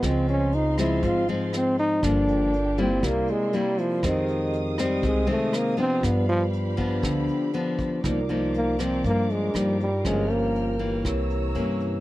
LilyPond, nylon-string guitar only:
\new Staff \with { instrumentName = "Nylon-string guitar" } { \clef bass \time 4/4 \key c \minor \tempo 4 = 120 << { <f aes c'>4 r8 <f aes c'>4 <f aes c'>4. | <f bes d'>4 r8 <g bes e'>4. <g bes e'>4 | <ees aes c'>4. <ees aes c'>4 <ees aes c'>4 <f b d'>8~ | <f b d'>4. <f b d'>4. <f b d'>4 |
<f bes ees'>8 <f bes ees'>4 <f bes ees'>4. <f bes ees'>8 r8 | <f bes des'>4. <e bes>4. <e bes des'>4 | } \\ { des2 aes,2 | g,2 c2 | f,2 c2 | g,2 d2 |
c2 g,2 | g,2 c2 | } >> }